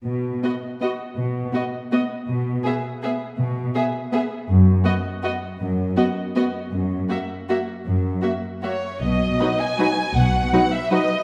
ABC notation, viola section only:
X:1
M:3/4
L:1/8
Q:1/4=160
K:B
V:1 name="Viola section"
z2 B,2 B,2 | z2 B,2 B,2 | z2 B,2 B,2 | z2 B,2 B,2 |
z2 B,2 B,2 | z2 B,2 B,2 | z2 A,2 A,2 | z2 A,2 A,2 |
z2 [F,D]2 [F,D]2 | z2 [F,D]2 [F,D]2 |]